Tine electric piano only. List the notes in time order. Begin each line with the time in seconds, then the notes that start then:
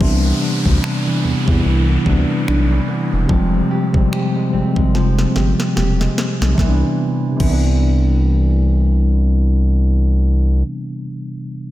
0.00 C3 E3 G3 B3 D4
1.45 C3 E3 G3 B3
1.50 E4
2.04 E3 G3 B3 C4
2.08 D4
3.27 C3 F3 G3 G#3
3.31 C4
3.92 C3 F3 G3 G#3
3.97 C4
4.51 C3 F3 G3 G#3
4.55 C4
6.49 C3
6.53 E3
6.58 G3
6.63 B3
6.67 D4
7.32 C3
7.36 E3
7.41 G3
7.45 B3
7.50 D4